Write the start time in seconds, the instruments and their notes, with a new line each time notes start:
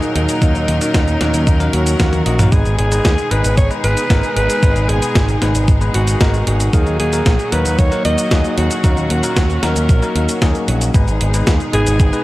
Already playing: string section A#2 D#3 F#3 D#4 A#4, tine electric piano F#3 A#3 D#4 G#4, alto saxophone D#4
0.02 closed hi-hat, cabasa
0.15 picked electric bass D#2, alto saxophone D#4, closed hi-hat
0.29 closed hi-hat, cabasa
0.42 picked electric bass D#2, tine electric piano F#3 A#3 D#4 A#4, string section C#4, kick, closed hi-hat, cabasa
0.55 picked electric bass D#2, closed hi-hat, cabasa
0.68 picked electric bass D#2, closed hi-hat
0.81 tine electric piano F#3 A#3 D#4 A#4, closed hi-hat, cabasa
0.94 picked electric bass D#2, kick, snare, closed hi-hat, cabasa
1.08 closed hi-hat, cabasa
1.21 picked electric bass D#2, tine electric piano F#3 A#3 D#4 A#4, snare, closed hi-hat
1.34 picked electric bass D#2, closed hi-hat, cabasa
1.47 picked electric bass D#2, kick, closed hi-hat, cabasa
1.60 tine electric piano F#3 A#3 D#4 A#4, closed hi-hat, cabasa
1.73 picked electric bass D#2, alto saxophone F#4, closed hi-hat
1.87 closed hi-hat, cabasa
2.00 picked electric bass D#2, tine electric piano F#3 A#3 D#4 A#4, kick, snare, closed hi-hat, high tom, cabasa
2.13 closed hi-hat, high tom, cabasa
2.26 picked electric bass A#1, tine electric piano F#3 A#3 D#4 D#5, alto saxophone F#4, closed hi-hat
2.39 tine electric piano F#3 A#3 D#4 A#4, closed hi-hat, mid tom, cabasa
2.52 picked electric bass G#1, string section B2 G#3 D#4 G#4, tine electric piano G#3 B3 D#4 B4, alto saxophone G#4, kick, closed hi-hat, cabasa
2.66 picked electric bass G#1, closed hi-hat, cabasa
2.78 picked electric bass G#1, alto saxophone G#4, closed hi-hat
2.92 tine electric piano G#3 B3 D#4 B4, closed hi-hat, cabasa
3.05 picked electric bass D#2, kick, snare, closed hi-hat, cabasa
3.18 closed hi-hat, cabasa
3.31 picked electric bass G#1, tine electric piano G#3 B3 D#4 B4, alto saxophone B4, closed hi-hat
3.44 picked electric bass G#1, closed hi-hat, cabasa
3.57 picked electric bass G#1, alto saxophone C#5, kick, closed hi-hat, cabasa
3.71 tine electric piano G#3 B3 D#4 B4, closed hi-hat, cabasa
3.84 picked electric bass G#1, alto saxophone B4, closed hi-hat
3.97 closed hi-hat, cabasa
4.10 picked electric bass G#1, tine electric piano G#3 B3 D#4 A#4, kick, snare, closed hi-hat, cabasa
4.23 closed hi-hat, cabasa
4.36 picked electric bass G#1, alto saxophone B4, closed hi-hat
4.50 closed hi-hat, cabasa
4.63 picked electric bass G#1, tine electric piano G#3 B3 D#4 B4, kick, closed hi-hat, cabasa
4.76 picked electric bass G#1, closed hi-hat, cabasa
4.89 picked electric bass G#1, alto saxophone G#4, closed hi-hat
5.02 tine electric piano G#3 B3 D#4 B4, closed hi-hat, cabasa
5.15 picked electric bass G#1, kick, snare, closed hi-hat, cabasa
5.29 closed hi-hat, cabasa
5.42 picked electric bass G#1, tine electric piano G#3 B3 D#4 B4, snare, closed hi-hat
5.55 picked electric bass G#1, closed hi-hat, cabasa
5.68 picked electric bass G#1, kick, closed hi-hat, cabasa
5.81 tine electric piano G#3 B3 D#4 B4, closed hi-hat, cabasa
5.94 picked electric bass G#1, alto saxophone F#4, closed hi-hat
6.07 closed hi-hat, cabasa
6.21 picked electric bass G#1, tine electric piano G#3 B3 D#4 A#4, kick, snare, closed hi-hat, cabasa
6.34 closed hi-hat, cabasa
6.47 picked electric bass G#1, alto saxophone F#4, closed hi-hat
6.60 closed hi-hat, cabasa
6.73 picked electric bass D#2, string section A#2 F#3 F#4, tine electric piano F#3 A#3 D#4 A#4, alto saxophone G#4, kick, closed hi-hat, cabasa
6.87 picked electric bass D#2, closed hi-hat, cabasa
7.00 picked electric bass D#2, alto saxophone G#4, closed hi-hat
7.13 tine electric piano F#3 A#3 D#4 A#4, closed hi-hat, cabasa
7.26 picked electric bass A#1, kick, snare, closed hi-hat, cabasa
7.39 closed hi-hat, cabasa
7.52 picked electric bass D#2, tine electric piano F#3 A#3 D#4 A#4, alto saxophone B4, closed hi-hat
7.65 picked electric bass D#2, closed hi-hat, cabasa
7.79 picked electric bass D#2, alto saxophone C#5, kick, closed hi-hat, cabasa
7.92 tine electric piano F#3 A#3 D#4 A#4, closed hi-hat, cabasa
8.05 picked electric bass D#2, alto saxophone D#5, closed hi-hat
8.18 closed hi-hat, cabasa
8.31 picked electric bass D#2, tine electric piano F#3 A#3 D#4 G#4, kick, snare, closed hi-hat, cabasa
8.44 closed hi-hat, cabasa
8.58 picked electric bass D#2, alto saxophone F#4, closed hi-hat
8.71 closed hi-hat, cabasa
8.84 picked electric bass D#2, tine electric piano F#3 A#3 D#4 A#4, string section C#4, kick, closed hi-hat, cabasa
8.97 picked electric bass D#2, closed hi-hat, cabasa
9.10 picked electric bass D#2, alto saxophone F#4, closed hi-hat
9.23 tine electric piano F#3 A#3 D#4 A#4, closed hi-hat, cabasa
9.37 picked electric bass D#2, kick, snare, closed hi-hat, cabasa
9.50 closed hi-hat, cabasa
9.63 picked electric bass D#2, tine electric piano F#3 A#3 D#4 A#4, alto saxophone A#4, snare, closed hi-hat
9.76 picked electric bass D#2, closed hi-hat, cabasa
9.89 picked electric bass A#1, kick, closed hi-hat, cabasa
10.02 tine electric piano F#3 A#3 D#4 A#4, closed hi-hat, cabasa
10.15 picked electric bass D#2, closed hi-hat
10.29 closed hi-hat, cabasa
10.42 picked electric bass D#2, tine electric piano F#3 A#3 D#4 G#4, kick, snare, closed hi-hat, cabasa
10.55 closed hi-hat, cabasa
10.68 picked electric bass A#1, closed hi-hat
10.81 closed hi-hat, cabasa
10.94 picked electric bass G#1, string section B2 D#3 G#3 D#4 G#4, tine electric piano G#3 B3 D#4 B4, kick, closed hi-hat, cabasa
11.08 picked electric bass G#1, closed hi-hat, cabasa
11.21 picked electric bass G#1, closed hi-hat
11.34 tine electric piano G#3 B3 D#4 B4, closed hi-hat, cabasa
11.47 picked electric bass D#2, kick, snare, closed hi-hat, cabasa
11.60 closed hi-hat, cabasa
11.73 picked electric bass G#1, tine electric piano G#3 B3 D#4 B4, alto saxophone G#4, closed hi-hat
11.87 picked electric bass G#1, closed hi-hat, cabasa
12.00 picked electric bass G#1, kick, closed hi-hat, cabasa
12.13 tine electric piano G#3 B3 D#4 B4, closed hi-hat, cabasa